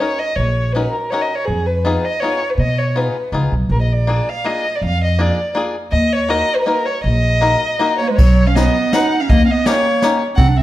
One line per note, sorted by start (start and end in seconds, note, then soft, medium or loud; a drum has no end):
0.00 0.20 C#4 soft
0.00 0.20 D#4 soft
0.00 0.20 F#4 soft
0.00 0.21 A#4 medium
0.00 0.20 C#5 medium
0.19 0.37 D#5 medium
0.36 0.85 A#1 medium
0.36 0.74 C#5 medium
0.73 0.94 C#4 medium
0.73 0.95 D#4 medium
0.73 0.95 F#4 soft
0.73 0.95 A#4 medium
0.73 0.91 B4 medium
0.92 1.11 A#4 medium
1.10 1.31 C#4 soft
1.10 1.32 D#4 soft
1.10 1.32 F#4 soft
1.10 1.32 A#4 medium
1.10 1.23 C#5 medium
1.22 1.37 D#5 medium
1.35 1.47 C#5 medium
1.45 1.96 F2 medium
1.45 1.68 G#4 medium
1.67 2.06 B4 medium
1.85 2.04 B3 medium
1.85 2.05 D#4 medium
1.85 2.05 F4 soft
1.85 2.05 G#4 medium
2.05 2.22 D#5 medium
2.20 2.41 B3 medium
2.20 2.42 D#4 soft
2.20 2.42 F4 medium
2.20 2.51 C#5 medium
2.24 2.42 G#4 medium
2.50 2.61 B4 soft
2.58 3.06 B2 medium
2.58 2.80 D#5 medium
2.78 2.99 C#5 medium
2.96 3.16 B3 soft
2.96 3.16 D#4 soft
2.96 3.16 F4 medium
2.96 3.16 G#4 medium
2.96 3.34 B4 medium
3.32 3.51 C#2 medium
3.32 3.53 B3 soft
3.32 3.53 D#4 soft
3.32 3.53 F4 soft
3.32 3.54 G#4 medium
3.52 3.68 B1 medium
3.69 4.19 A#1 medium
3.69 3.81 A#4 medium
3.82 3.94 D#5 medium
3.93 4.31 D5 medium
4.07 4.28 A#3 medium
4.07 4.28 D4 soft
4.07 4.28 F4 soft
4.07 4.29 G#4 medium
4.29 4.48 F5 medium
4.44 4.65 A#3 medium
4.44 4.65 D4 soft
4.44 4.66 F4 soft
4.44 4.66 G#4 medium
4.44 4.77 D#5 medium
4.76 4.84 D5 medium
4.82 5.29 F2 medium
4.82 5.02 F5 medium
5.04 5.23 D#5 medium
5.19 5.38 A#3 medium
5.19 5.38 D4 medium
5.19 5.39 F4 soft
5.19 5.39 G#4 medium
5.19 5.57 D5 medium
5.55 5.75 A#3 medium
5.55 5.75 D4 soft
5.55 5.76 F4 medium
5.55 5.76 G#4 medium
5.92 6.41 D#2 medium
5.92 6.14 D#5 medium
6.13 6.32 C#5 medium
6.29 6.49 A#3 medium
6.29 6.49 D#4 soft
6.29 6.50 F#4 medium
6.29 6.50 A#4 medium
6.29 6.57 D#5 loud
6.55 6.63 A#4 medium
6.55 6.61 B4 medium
6.61 6.69 B4 medium
6.66 6.87 A#3 medium
6.66 6.87 D#4 medium
6.66 6.87 F#4 medium
6.66 6.87 A#4 medium
6.86 7.03 C#5 medium
7.04 7.54 A#1 medium
7.04 7.97 D#5 loud
7.41 7.62 A#3 medium
7.41 7.63 D#4 medium
7.41 7.62 F#4 medium
7.41 7.63 A#4 medium
7.79 8.01 A#3 medium
7.79 8.01 D#4 medium
7.79 8.01 F#4 medium
7.79 8.02 A#4 medium
7.98 8.12 A#3 medium
7.98 8.09 C#5 medium
8.08 8.21 G#3 medium
8.08 8.17 B4 medium
8.16 8.67 B1 medium
8.16 8.49 F#3 medium
8.16 8.48 C#5 medium
8.16 kick medium
8.16 crash medium
8.47 8.59 C#4 medium
8.47 8.57 F5 medium
8.55 8.95 B3 medium
8.55 8.75 C#4 medium
8.55 8.76 D#4 medium
8.55 8.76 F#4 soft
8.55 8.76 B4 medium
8.55 8.95 D#5 medium
8.55 snare medium
8.55 closed hi-hat soft
8.93 9.13 C#4 medium
8.93 9.23 D#4 medium
8.93 9.13 D#4 medium
8.93 9.14 F#4 medium
8.93 9.14 B4 medium
8.93 9.22 F#5 medium
8.93 snare medium
8.93 closed hi-hat soft
9.20 9.31 C#4 medium
9.20 9.31 F5 medium
9.29 9.42 D#2 medium
9.29 9.44 A#3 medium
9.29 9.44 D#5 medium
9.29 kick medium
9.29 closed hi-hat soft
9.45 9.51 C#4 soft
9.45 9.52 F5 medium
9.50 9.69 B3 medium
9.50 9.68 D#5 medium
9.66 10.22 A#3 medium
9.66 9.86 C#4 medium
9.66 9.86 D#4 medium
9.66 9.86 G4 medium
9.66 9.87 A#4 medium
9.66 10.22 C#5 loud
9.66 snare medium
9.66 closed hi-hat soft
10.02 10.22 C#4 medium
10.02 10.22 D#4 medium
10.02 10.22 G4 medium
10.02 10.22 A#4 medium
10.02 snare medium
10.02 closed hi-hat soft
10.36 10.63 C2 medium
10.36 10.50 C4 loud
10.36 10.52 F#5 loud
10.36 kick medium
10.36 closed hi-hat soft
10.49 10.58 D4 medium
10.49 10.58 F#5 medium
10.56 10.63 C4 medium
10.56 10.63 E5 loud